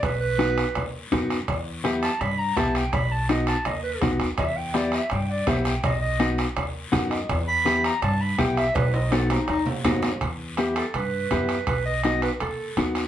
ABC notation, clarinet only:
X:1
M:4/4
L:1/8
Q:1/4=165
K:Em
V:1 name="Clarinet"
B B4 z3 | z3 a b ^a =a g | b a ^d a d B z2 | e g d e g d e g |
^d d2 z4 z | z b2 ^a =a b g e | B ^d A ^D D z3 | z2 G A B4 |
B ^d d B A3 z |]